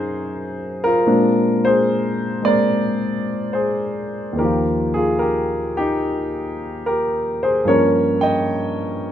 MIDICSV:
0, 0, Header, 1, 2, 480
1, 0, Start_track
1, 0, Tempo, 806452
1, 639, Time_signature, 4, 2, 24, 8
1, 1608, Tempo, 846262
1, 2568, Tempo, 823045
1, 4008, Tempo, 801068
1, 5360, End_track
2, 0, Start_track
2, 0, Title_t, "Grand piano"
2, 0, Program_c, 0, 0
2, 0, Control_c, 0, 64, 127
2, 0, Note_on_c, 0, 42, 46
2, 0, Note_on_c, 0, 54, 42
2, 0, Note_on_c, 0, 58, 45
2, 0, Note_on_c, 0, 63, 56
2, 0, Note_on_c, 0, 66, 60
2, 0, Note_on_c, 0, 68, 75
2, 0, Note_on_c, 0, 70, 85
2, 0, Note_on_c, 0, 72, 79
2, 477, Note_off_c, 0, 63, 0
2, 498, Note_off_c, 0, 70, 0
2, 498, Note_on_c, 0, 70, 88
2, 509, Note_on_c, 0, 65, 59
2, 518, Note_off_c, 0, 68, 0
2, 619, Note_off_c, 0, 42, 0
2, 629, Note_off_c, 0, 54, 0
2, 630, Note_on_c, 0, 46, 51
2, 633, Note_on_c, 0, 56, 44
2, 638, Note_on_c, 0, 60, 43
2, 639, Note_on_c, 0, 62, 53
2, 641, Note_off_c, 0, 58, 0
2, 646, Control_c, 0, 64, 0
2, 647, Note_off_c, 0, 66, 0
2, 649, Note_off_c, 0, 72, 0
2, 749, Control_c, 0, 64, 127
2, 957, Note_off_c, 0, 65, 0
2, 980, Note_on_c, 0, 72, 82
2, 990, Note_off_c, 0, 70, 0
2, 993, Note_on_c, 0, 68, 55
2, 1431, Note_off_c, 0, 56, 0
2, 1437, Note_off_c, 0, 72, 0
2, 1440, Note_on_c, 0, 56, 36
2, 1443, Note_off_c, 0, 68, 0
2, 1448, Note_off_c, 0, 60, 0
2, 1451, Note_on_c, 0, 58, 35
2, 1457, Note_on_c, 0, 60, 39
2, 1458, Note_on_c, 0, 74, 80
2, 1471, Note_on_c, 0, 70, 62
2, 2070, Note_off_c, 0, 70, 0
2, 2078, Note_on_c, 0, 72, 62
2, 2088, Note_on_c, 0, 68, 55
2, 2105, Note_off_c, 0, 74, 0
2, 2531, Note_on_c, 0, 39, 47
2, 2546, Note_off_c, 0, 68, 0
2, 2555, Note_on_c, 0, 51, 42
2, 2563, Note_off_c, 0, 46, 0
2, 2563, Note_on_c, 0, 70, 67
2, 2565, Note_off_c, 0, 56, 0
2, 2567, Note_off_c, 0, 62, 0
2, 2570, Note_off_c, 0, 58, 0
2, 2570, Note_on_c, 0, 67, 52
2, 2573, Note_off_c, 0, 60, 0
2, 2574, Control_c, 0, 64, 0
2, 2576, Note_on_c, 0, 53, 44
2, 2578, Note_off_c, 0, 72, 0
2, 2596, Note_on_c, 0, 65, 49
2, 2694, Control_c, 0, 64, 127
2, 2874, Note_off_c, 0, 70, 0
2, 2878, Note_off_c, 0, 67, 0
2, 2886, Note_on_c, 0, 68, 74
2, 2892, Note_off_c, 0, 65, 0
2, 2901, Note_on_c, 0, 65, 52
2, 3031, Note_off_c, 0, 68, 0
2, 3032, Note_on_c, 0, 70, 70
2, 3039, Note_off_c, 0, 65, 0
2, 3046, Note_on_c, 0, 67, 52
2, 3108, Note_off_c, 0, 70, 0
2, 3121, Note_off_c, 0, 67, 0
2, 3371, Note_on_c, 0, 67, 77
2, 3379, Note_on_c, 0, 63, 60
2, 3983, Note_off_c, 0, 63, 0
2, 4007, Note_off_c, 0, 67, 0
2, 4008, Note_on_c, 0, 70, 77
2, 4016, Note_on_c, 0, 67, 57
2, 4323, Note_off_c, 0, 67, 0
2, 4347, Note_on_c, 0, 72, 73
2, 4351, Note_off_c, 0, 70, 0
2, 4352, Note_on_c, 0, 68, 58
2, 4471, Note_off_c, 0, 39, 0
2, 4477, Note_off_c, 0, 53, 0
2, 4479, Note_on_c, 0, 43, 51
2, 4485, Note_off_c, 0, 51, 0
2, 4486, Note_on_c, 0, 53, 44
2, 4487, Note_off_c, 0, 68, 0
2, 4496, Note_on_c, 0, 73, 82
2, 4498, Note_off_c, 0, 72, 0
2, 4498, Control_c, 0, 64, 0
2, 4498, Note_on_c, 0, 58, 47
2, 4502, Note_on_c, 0, 70, 63
2, 4503, Note_on_c, 0, 61, 53
2, 4597, Control_c, 0, 64, 127
2, 4802, Note_off_c, 0, 73, 0
2, 4805, Note_off_c, 0, 70, 0
2, 4815, Note_on_c, 0, 79, 78
2, 4826, Note_on_c, 0, 75, 65
2, 5360, Note_off_c, 0, 43, 0
2, 5360, Note_off_c, 0, 53, 0
2, 5360, Note_off_c, 0, 58, 0
2, 5360, Note_off_c, 0, 61, 0
2, 5360, Note_off_c, 0, 75, 0
2, 5360, Note_off_c, 0, 79, 0
2, 5360, End_track
0, 0, End_of_file